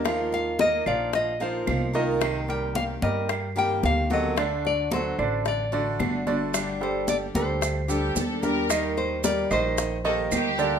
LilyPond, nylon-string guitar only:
\new Staff \with { instrumentName = "Nylon-string guitar" } { \time 4/4 \key ees \lydian \tempo 4 = 111 r8 f''8 ees''8 d''8 ees''8 c''4 r8 | r8 g''8 f''8 ees''8 r8 g''8 f''8 ees''8 | r8 d''8 c''4 d''4. r8 | r8 c''8 d''8 c''2 r8 |
r8 c''8 d''8 c''2 r8 | }